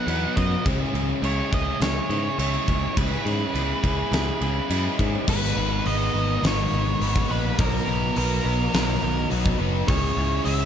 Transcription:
Already playing: lead electric guitar F#5
0.06 picked electric bass E2, overdriven electric guitar F#3 B3 D#4 B4, crash
0.37 picked electric bass F#2, lead electric guitar D#5, kick, crash
0.65 picked electric bass C#2, overdriven electric guitar C#3 G#3 C#4 E4 G#4, kick, crash
0.93 picked electric bass C#2, overdriven electric guitar C#4 E4 G#4, crash
1.22 picked electric bass C#2, overdriven electric guitar G#3 C#4 E4 G#4, lead electric guitar C#5, crash
1.51 picked electric bass C#2, overdriven electric guitar C#4 E4 G#4, lead electric guitar D#5, kick, crash
1.80 picked electric bass C#2, lead electric guitar C#5, snare, crash
2.09 picked electric bass G#2, overdriven electric guitar C#4 E4 G#4, crash
2.38 picked electric bass C#2, overdriven electric guitar G#3 C#4 E4 G#4, lead electric guitar C#5, crash
2.68 picked electric bass C#2, kick, crash
2.96 picked electric bass C#2, overdriven electric guitar C#3 G#3 C#4 E4 G#4, lead electric guitar B4, kick, crash
3.25 picked electric bass G#2, overdriven electric guitar C#4 E4 G#4, crash
3.54 picked electric bass C#2, overdriven electric guitar G#3 C#4 E4 G#4, crash
3.82 picked electric bass C#2, overdriven electric guitar C#4 E4 G#4, kick, crash
4.12 picked electric bass C#2, snare, crash
4.41 picked electric bass C#2, overdriven electric guitar C#4 E4 G#4, crash
4.69 picked electric bass F#2, overdriven electric guitar G#3 C#4 E4 G#4, crash
4.99 picked electric bass G#2, kick, crash
5.27 picked electric bass G#1, overdriven electric guitar G#2 D#3 G#3 B3 D#4 B4, lead electric guitar B4, kick, crash
5.57 picked electric bass G#1, overdriven electric guitar G#3 B3 D#4 B4
5.85 picked electric bass G#1, overdriven electric guitar G#3 B3 D#4 B4, lead electric guitar D#5, open hi-hat
6.14 picked electric bass G#1, overdriven electric guitar G#3 B3 D#4 B4
6.42 picked electric bass G#1, overdriven electric guitar G#2 D#3 G#3 B3 D#4 B4, snare, open hi-hat
6.47 lead electric guitar C#5
6.71 picked electric bass G#1, overdriven electric guitar G#3 B3 D#4 B4
7.00 picked electric bass G#1, overdriven electric guitar G#3 B3 D#4 B4, open hi-hat
7.16 kick
7.29 picked electric bass A#1, overdriven electric guitar G#3 B3 D#4 B4, lead electric guitar B4
7.57 picked electric bass B1, overdriven electric guitar B2 D#3 F#3 B3 D#4 B4, lead electric guitar A#4, kick, open hi-hat
7.86 picked electric bass B1, overdriven electric guitar F#3 B3 D#4 B4
8.14 picked electric bass B1, overdriven electric guitar F#3 B3 D#4 B4, lead electric guitar A#4, open hi-hat
8.43 picked electric bass B1, overdriven electric guitar F#3 B3 D#4 B4
8.73 picked electric bass B1, overdriven electric guitar B2 D#3 F#3 B3 D#4 B4, snare, open hi-hat
9.01 picked electric bass B1, overdriven electric guitar F#3 B3 D#4 B4
9.29 picked electric bass B1, overdriven electric guitar F#3 B3 D#4 B4, open hi-hat
9.46 kick
9.58 picked electric bass F#1, overdriven electric guitar F#3 B3 D#4 B4
9.87 picked electric bass C#2, overdriven electric guitar C#3 G#3 C#4 E4 G#4, lead electric guitar C#5, kick, open hi-hat
10.15 picked electric bass C#2, overdriven electric guitar C#4 E4 G#4
10.44 picked electric bass C#2, overdriven electric guitar G#3 C#4 E4 G#4, lead electric guitar E5, open hi-hat

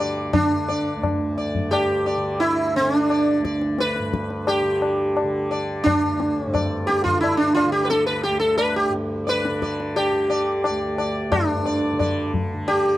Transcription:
Already playing: tanpura D2 G2 D3, sitar G4
0.00 sitar D5, tabla na
0.33 tanpura D3, sitar D4, tabla na, tabla ge
0.68 sitar D5, tabla te
0.95 tanpura D2
1.03 tabla na, tabla ge
1.38 sitar D5, tabla te
1.55 tanpura G2, tabla ge
1.71 sitar G4, tabla na
2.06 sitar D5, tabla na
2.17 tanpura D3
2.40 sitar E4, tabla te
2.76 sitar C4, tabla te
2.80 tanpura D3
2.95 sitar D4
3.10 sitar D5, tabla na
3.39 tanpura D2
3.44 sitar D5, tabla ke
3.62 tabla te
3.79 sitar B4, tabla te
3.96 tanpura G2, tabla te
4.14 tabla ke
4.30 tabla te
4.47 sitar G4, tabla na
4.62 tanpura D3
4.82 tabla na
5.17 tabla na
5.24 tanpura D3
5.51 sitar D5, tabla na
5.84 tanpura D2, sitar D4, tabla na, tabla ge
6.20 tabla te
6.39 sitar C#4
6.46 tanpura G2
6.52 sitar C4 D5, tabla na, tabla ge
6.87 sitar G4, tabla te
7.04 tanpura D3, sitar F4, tabla ge
7.21 sitar E4, tabla na
7.37 sitar D4
7.54 sitar F4, tabla na
7.66 tanpura D3
7.72 sitar G4
7.85 sitar B4
7.90 sitar A4, tabla te
8.06 sitar B4
8.23 sitar G4, tabla te
8.29 tanpura D2
8.40 sitar A4
8.58 sitar B4, tabla na
8.76 sitar G4
8.89 tanpura G2
8.94 tabla te
9.27 sitar B4 D5, tabla te
9.45 tanpura D3, tabla te
9.62 sitar D5, tabla ke
9.80 tabla te
9.96 sitar G4, tabla na
10.11 tanpura D3
10.30 sitar D5, tabla na
10.64 sitar D5, tabla na
10.69 tanpura D2
10.98 sitar D5, tabla na
11.30 tanpura G2, sitar D4, tabla na, tabla ge
11.65 sitar D5, tabla te
11.93 tanpura D3
11.99 sitar D5, tabla na, tabla ge
12.34 tabla ge
12.54 tanpura D3
12.68 sitar G4, tabla na

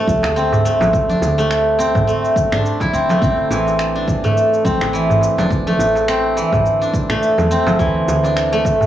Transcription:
Already playing: guzheng A3 C4 D4, singing bowl G4
0.07 fm bass C2, kick, low conga, shaker
0.23 fm bass D2, finger snap, darbuka tek, shaker
0.36 guzheng C4, shaker
0.52 darbuka dum, shaker
0.65 guzheng A3, darbuka ka, shaker
0.81 fm bass A1, darbuka tek, low conga, shaker
0.93 kick, shaker
1.09 guzheng D4, low conga, shaker
1.22 fm bass D2, darbuka tek, shaker
1.38 guzheng A3, darbuka ka, shaker
1.51 finger snap, shaker
1.78 guzheng C4, darbuka ka, shaker
1.95 kick, darbuka dum, shaker
2.07 guzheng A3, shaker
2.25 shaker
2.36 kick, shaker
2.52 fm bass A1, guzheng D4, finger snap, darbuka ka, darbuka dum, shaker
2.66 shaker
2.80 guzheng E4, kick, darbuka ka, darbuka tek, low conga, shaker
2.93 fm bass D1, guzheng C4, shaker
3.10 guzheng A3, darbuka tek, low conga, shaker
3.22 fm bass A1, guzheng C4, kick, shaker
3.50 fm bass A1, guzheng E3, darbuka tek, shaker
3.67 darbuka ka, shaker
3.79 finger snap, shaker
3.96 guzheng D4
4.08 kick, darbuka ka, shaker
4.24 guzheng A3, darbuka dum, shaker
4.37 shaker
4.54 shaker
4.65 fm bass G1, guzheng C4, kick, low conga, shaker
4.81 fm bass A1, finger snap, darbuka tek, shaker
4.93 guzheng E3, shaker
5.10 darbuka dum, shaker
5.21 darbuka ka, shaker
5.38 fm bass E1, guzheng D4, darbuka tek, low conga, shaker
5.51 kick, shaker
5.67 guzheng A3, low conga
5.79 fm bass A1, darbuka tek, shaker
5.95 darbuka ka, shaker
6.08 guzheng C4, finger snap, shaker
6.36 guzheng E3, darbuka ka, shaker
6.52 kick, darbuka dum, shaker
6.66 shaker
6.81 guzheng D4, shaker
6.94 kick, shaker
7.10 fm bass A1, guzheng A3, finger snap, darbuka ka, shaker
7.23 shaker
7.38 fm bass E2, darbuka ka, darbuka tek, low conga, shaker
7.51 guzheng C4, shaker
7.67 fm bass G1, darbuka tek, low conga, shaker
7.79 fm bass D2, guzheng E3, kick, shaker
8.08 fm bass D2, darbuka tek, shaker
8.24 guzheng D4, darbuka ka, shaker
8.37 finger snap, shaker
8.53 guzheng A3
8.65 kick, darbuka ka, shaker
8.81 darbuka dum, shaker

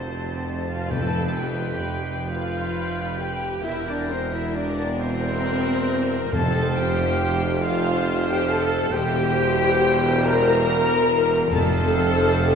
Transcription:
Already playing: double bass section F1, tuba F1, cello section F2, french horn section C4, viola section C4, violin section C5, flute C5, clarinet C5, oboe A5
0.66 french horn section F4, viola section F4, violin section F5, flute F5
0.90 timpani F2, viola section A4, french horn section A4, violin section B4 A5, clarinet B4, oboe G5, flute A5
1.36 viola section G4, french horn section G4, flute G5, violin section G5
2.21 viola section G4
2.27 viola section F4, french horn section F4, clarinet B4, violin section B4 F5, flute F5, oboe G5
3.18 viola section G4, french horn section G4, flute G5, violin section G5
3.62 double bass section E1, tuba E1, cello section E2, french horn section E4, viola section E4, clarinet A#4, violin section A#4 E5, flute E5, oboe G5
3.86 viola section D4, french horn section D4, flute D5, violin section D5
4.09 viola section C4, french horn section C4, violin section C5, flute C5
4.32 viola section E4, french horn section E4, flute E5, violin section E5
4.54 viola section D4, french horn section D4, violin section D5, flute D5
4.98 viola section C4, french horn section C4, violin section A#4 C5, clarinet A#4, flute C5, oboe G5
6.27 viola section A#4, violin section C5
6.31 double bass section F1, tuba F1, cello section F2, timpani F2, french horn section A4, viola section A4, clarinet C5, oboe F5, violin section A5, flute A5
6.76 viola section G4, french horn section G4, violin section G5, flute G5
7.60 french horn section F4, viola section F4, clarinet C5, violin section C5 F5, oboe F5
7.65 flute F5
8.28 french horn section G4, viola section G4, violin section G5, flute G5
8.46 french horn section A4, flute A5
8.50 viola section A4, violin section A5
8.92 tuba E1, double bass section E1, cello section E2, french horn section G4, viola section G4, violin section C5, clarinet C5, oboe G5, flute G5
8.96 violin section G5
10.21 french horn section A#4, viola section A#4, flute A#5, violin section A#5
11.51 tuba F1, double bass section F1, cello section F2, timpani F2, viola section A4, french horn section A4, clarinet C5, violin section C5 A5, oboe F5, flute A5

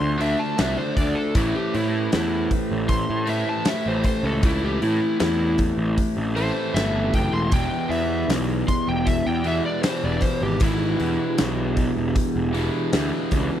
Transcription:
Already playing: overdriven electric guitar D3 A3 D4, tonewheel organ F4 F#4 C5 D5, electric slide guitar C6
0.01 picked electric bass D2
0.18 overdriven electric guitar D3 A3 D4, electric slide guitar E5, open hi-hat
0.39 electric slide guitar A5
0.57 picked electric bass C2, overdriven electric guitar D3 A3 D4, electric slide guitar E5, snare, open hi-hat
0.77 electric slide guitar C5
0.97 picked electric bass D2, electric slide guitar D5, kick, open hi-hat
1.15 electric slide guitar A4
1.35 picked electric bass A1, overdriven electric guitar A2 E3 A3, tonewheel organ C#4 G4 A4 C5, electric slide guitar E4, kick, open hi-hat
1.55 electric slide guitar G4
1.74 picked electric bass A2, electric slide guitar E4, open hi-hat
2.12 picked electric bass E2, electric slide guitar E4, snare, open hi-hat
2.51 kick, open hi-hat
2.71 picked electric bass A1
2.89 electric slide guitar C6, kick, open hi-hat
3.10 picked electric bass A2
3.25 overdriven electric guitar A2 E3 A3, electric slide guitar E5, open hi-hat
3.49 electric slide guitar A5
3.65 overdriven electric guitar A2 E3 A3, electric slide guitar E5, snare, open hi-hat
3.86 picked electric bass A1, electric slide guitar C5
4.04 electric slide guitar C5, kick, open hi-hat
4.23 picked electric bass C#2, electric slide guitar A4
4.41 picked electric bass C#2, overdriven electric guitar A2 E3, tonewheel organ C4 C#4 G4 A4, kick, open hi-hat
4.45 overdriven electric guitar A3, electric slide guitar E4
4.64 electric slide guitar G4
4.82 picked electric bass A2, electric slide guitar E4, open hi-hat
5.20 picked electric bass E2, electric slide guitar E4, snare, open hi-hat
5.58 kick, open hi-hat
5.78 picked electric bass A1
5.98 kick, open hi-hat
6.17 picked electric bass A1
6.35 overdriven electric guitar A2 E3 A3, electric slide guitar C5, open hi-hat
6.73 picked electric bass G1, overdriven electric guitar A2 E3 A3, electric slide guitar E5, snare, open hi-hat
6.92 picked electric bass G1
7.13 picked electric bass F#1, electric slide guitar G5, kick, open hi-hat
7.32 picked electric bass E1, electric slide guitar C6
7.51 picked electric bass E1, overdriven electric guitar E2 B2 E3, tonewheel organ E4 G4 G#4 D5, electric slide guitar G5, kick, open hi-hat
7.89 picked electric bass E2, electric slide guitar E5, open hi-hat
8.29 picked electric bass B1, snare, open hi-hat
8.68 electric slide guitar C6, kick, open hi-hat
8.88 picked electric bass E1, electric slide guitar G5
9.07 electric slide guitar E5, kick, open hi-hat
9.27 picked electric bass E2, electric slide guitar G5
9.44 overdriven electric guitar E2 B2 E3, electric slide guitar E5, open hi-hat
9.66 electric slide guitar D5
9.82 overdriven electric guitar E2 B2 E3, electric slide guitar C5, snare, open hi-hat
10.04 picked electric bass E1, electric slide guitar D5
10.21 electric slide guitar C5, kick, open hi-hat
10.42 picked electric bass G#1, electric slide guitar G4
10.60 picked electric bass G#1, overdriven electric guitar E2 B2 E3, tonewheel organ D#4 F4 G#4, electric slide guitar E4, kick, open hi-hat
10.64 tonewheel organ A4
10.88 tonewheel organ D4 E4 G4 G#4
11.00 picked electric bass E2, open hi-hat
11.38 picked electric bass B1, snare, open hi-hat
11.77 kick, open hi-hat
11.97 picked electric bass E1
12.16 kick, open hi-hat
12.36 picked electric bass E1
12.53 overdriven electric guitar E2 B2 E3, open hi-hat
12.92 picked electric bass D2, overdriven electric guitar E2 B2 E3, snare, open hi-hat
13.31 picked electric bass C#2, kick, open hi-hat

